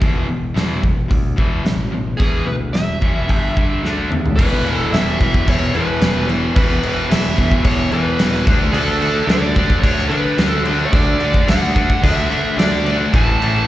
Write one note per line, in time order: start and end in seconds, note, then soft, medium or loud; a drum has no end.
0.00 0.26 E1 medium
0.00 0.26 E2 medium
0.00 0.27 B2 medium
0.00 0.27 E3 medium
0.00 kick medium
0.00 open hi-hat soft
0.28 0.53 E1 medium
0.28 0.53 E2 medium
0.28 0.53 B2 medium
0.54 0.80 E1 medium
0.54 0.81 E2 medium
0.54 0.81 B2 medium
0.54 0.81 E3 loud
0.54 snare loud
0.54 open hi-hat soft
0.83 1.07 E1 medium
0.83 1.07 E2 medium
0.83 1.08 B2 medium
0.83 kick medium
1.08 1.35 D2 medium
1.08 1.34 E2 medium
1.08 1.34 B2 medium
1.08 kick medium
1.08 open hi-hat soft
1.36 1.62 E1 medium
1.36 1.63 E2 medium
1.36 1.63 B2 medium
1.36 1.63 E3 medium
1.36 kick medium
1.64 2.13 A1 medium
1.64 1.89 E2 medium
1.64 1.89 B2 medium
1.64 snare loud
1.64 open hi-hat soft
1.91 2.16 E2 medium
1.91 2.17 B2 medium
2.17 2.44 E1 medium
2.17 2.44 E2 medium
2.17 2.45 B2 medium
2.17 2.45 E3 medium
2.17 2.47 G#4 medium
2.17 kick medium
2.17 open hi-hat soft
2.46 2.71 D2 medium
2.46 2.71 E2 medium
2.46 2.71 B2 medium
2.46 2.54 B4 medium
2.73 3.30 E1 medium
2.73 2.98 E2 medium
2.73 2.99 B2 medium
2.73 3.79 E5 medium
2.73 snare loud
2.73 open hi-hat soft
3.01 3.27 E2 medium
3.01 3.28 B2 medium
3.01 3.28 E3 medium
3.01 kick medium
3.27 3.54 G1 medium
3.27 3.54 G2 medium
3.27 3.54 D3 medium
3.27 3.55 G3 medium
3.27 kick medium
3.27 open hi-hat soft
3.56 3.81 G1 medium
3.56 3.82 G2 medium
3.56 3.82 D3 medium
3.56 3.82 G3 medium
3.56 kick medium
3.83 4.08 D2 medium
3.83 4.09 D3 medium
3.83 4.09 A3 medium
3.83 4.10 D4 medium
3.83 snare medium
4.11 4.35 D#2 medium
4.11 4.35 D3 medium
4.11 4.36 A3 medium
4.11 mid tom medium
4.26 floor tom medium
4.36 4.85 E1 medium
4.36 4.65 E2 medium
4.36 4.65 B2 medium
4.36 4.67 E3 medium
4.36 4.88 B4 medium
4.36 kick loud
4.36 crash loud
4.36 crash medium
4.65 4.93 E2 medium
4.65 4.92 B2 loud
4.65 4.94 E3 medium
4.65 crash medium
4.93 5.40 E1 medium
4.93 5.20 E2 loud
4.93 5.21 B2 loud
4.93 5.22 E3 loud
4.93 5.49 E5 loud
4.93 snare loud
4.93 crash medium
5.20 5.45 E2 medium
5.20 5.46 B2 medium
5.20 5.47 E3 medium
5.20 kick medium
5.20 crash medium
5.34 kick medium
5.46 5.71 E1 medium
5.46 5.73 E2 medium
5.46 5.74 B2 medium
5.46 5.75 E3 medium
5.46 5.76 C#5 medium
5.46 kick medium
5.46 crash medium
5.74 5.98 E2 medium
5.74 6.01 E2 medium
5.74 6.02 B2 loud
5.74 6.02 E3 loud
5.74 6.26 B4 medium
5.74 crash medium
6.01 6.49 E1 medium
6.01 6.28 E2 medium
6.01 6.28 B2 medium
6.01 6.29 E3 medium
6.01 snare loud
6.01 crash medium
6.29 6.55 E2 medium
6.29 6.55 B2 medium
6.29 6.56 E3 medium
6.29 crash medium
6.56 7.03 E1 medium
6.56 6.81 E2 medium
6.56 6.81 B2 loud
6.56 6.82 E3 loud
6.56 7.12 B4 loud
6.56 kick loud
6.56 crash medium
6.82 7.08 E2 medium
6.82 7.09 B2 loud
6.82 7.09 E3 medium
6.82 crash medium
7.09 7.59 E1 loud
7.09 7.36 E2 medium
7.09 7.37 B2 loud
7.09 7.37 E3 loud
7.09 7.61 E5 loud
7.09 snare loud
7.09 crash loud
7.37 7.63 E2 medium
7.37 7.64 B2 loud
7.37 7.65 E3 loud
7.37 kick medium
7.37 crash medium
7.52 kick medium
7.64 7.89 E1 medium
7.64 7.90 E2 medium
7.64 7.91 B2 medium
7.64 7.92 E3 loud
7.64 7.92 C#5 loud
7.64 kick medium
7.64 crash medium
7.91 8.18 E2 medium
7.91 8.16 E2 medium
7.91 8.19 B2 loud
7.91 8.19 E3 loud
7.91 8.43 B4 medium
7.91 crash medium
8.19 8.43 E1 medium
8.19 8.45 E2 medium
8.19 8.46 B2 medium
8.19 8.46 E3 loud
8.19 snare loud
8.19 crash medium
8.34 snare soft
8.47 8.71 D2 medium
8.47 8.73 D3 loud
8.47 8.73 A3 loud
8.47 8.74 D4 loud
8.47 kick loud
8.47 crash medium
8.72 9.21 D2 loud
8.72 9.00 D3 medium
8.72 9.01 A3 loud
8.72 9.02 D4 loud
8.72 9.24 A4 medium
8.72 crash medium
9.01 9.27 D3 medium
9.01 9.27 A3 medium
9.01 9.28 D4 medium
9.01 crash medium
9.25 9.75 D2 medium
9.25 9.55 D3 loud
9.25 9.55 A3 loud
9.25 9.56 D4 loud
9.25 9.79 D5 loud
9.29 snare loud
9.29 crash medium
9.55 9.81 D3 medium
9.55 9.83 A3 medium
9.55 9.82 D4 medium
9.55 kick medium
9.55 crash medium
9.70 kick medium
9.80 10.07 D2 loud
9.80 10.08 D3 medium
9.80 10.10 A3 medium
9.80 10.10 D4 medium
9.80 10.09 C#5 loud
9.80 kick medium
9.80 crash medium
9.99 snare soft
10.09 10.36 D3 loud
10.09 10.34 D3 medium
10.09 10.38 A3 loud
10.09 10.38 D4 loud
10.09 10.50 B4 medium
10.09 crash medium
10.37 10.85 D2 medium
10.37 10.63 D3 medium
10.37 10.65 A3 medium
10.37 10.64 D4 loud
10.37 snare loud
10.37 crash medium
10.50 10.61 A4 medium
10.64 10.91 D3 medium
10.64 10.92 A3 medium
10.64 10.92 D4 loud
10.64 crash medium
10.69 12.85 D4 loud
10.85 10.93 C#5 medium
10.92 11.40 D2 loud
10.92 11.18 D3 medium
10.92 11.20 A3 medium
10.92 11.19 D4 loud
10.92 11.50 D5 medium
10.92 kick loud
10.92 crash medium
11.19 11.46 D3 medium
11.19 11.47 A3 medium
11.19 11.47 D4 loud
11.19 crash medium
11.34 kick medium
11.47 11.95 D2 loud
11.47 11.74 D3 loud
11.47 11.75 A3 loud
11.47 11.74 D4 loud
11.47 12.03 F#5 medium
11.47 snare loud
11.47 crash medium
11.75 12.01 D3 medium
11.75 12.03 A3 medium
11.75 12.03 D4 medium
11.75 kick medium
11.75 crash medium
11.90 kick medium
12.02 12.27 D2 medium
12.02 12.28 D3 medium
12.02 12.30 A3 medium
12.02 12.30 D4 medium
12.02 12.60 E5 medium
12.02 kick loud
12.02 crash medium
12.30 12.56 D3 medium
12.30 12.54 D3 medium
12.30 12.58 A3 loud
12.30 12.57 D4 loud
12.30 crash medium
12.57 13.05 D2 medium
12.57 12.83 D3 medium
12.57 12.85 A3 medium
12.57 12.84 D4 medium
12.57 12.96 D5 medium
12.57 snare loud
12.57 crash medium
12.84 13.11 D3 medium
12.84 13.13 A3 medium
12.84 13.11 D4 medium
12.84 crash medium
13.13 13.61 A1 loud
13.13 13.40 A2 medium
13.13 13.40 E3 loud
13.13 13.41 A3 loud
13.13 13.67 A5 loud
13.13 kick loud
13.13 crash medium
13.40 13.67 A2 medium
13.40 13.67 E3 medium
13.40 13.67 A3 loud
13.40 crash medium